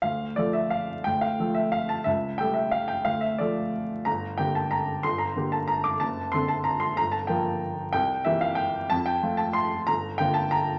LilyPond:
<<
  \new Staff \with { instrumentName = "Upright piano" } { \time 3/4 \key d \minor \tempo 4 = 182 f''4 d''8 e''8 f''4 | g''8 f''4 e''8 f''8 a''8 | e''4 g''8 e''8 f''8 g''8 | f''8 e''8 d''4. r8 |
bes''4 g''8 a''8 bes''4 | c'''8 bes''4 a''8 bes''8 d'''8 | a''4 c'''8 a''8 bes''8 c'''8 | bes''8 a''8 g''4. r8 |
g''4 e''8 f''8 g''4 | a''8 g''4 a''8 c'''4 | bes''4 g''8 a''8 bes''4 | }
  \new Staff \with { instrumentName = "Upright piano" } { \clef bass \time 3/4 \key d \minor d,4 <f a a'>2 | d,4 <f a a'>2 | cis,4 <g a a'>2 | d,4 <f a a'>2 |
g,,4 <d bes g'>2 | g,,4 <d bes g'>2 | fis,,4 <d c' a'>2 | g,,4 <f bes bes'>2 |
c,4 <e bes g'>2 | f,4 <f a f'>2 | g,,4 <d bes f'>2 | }
>>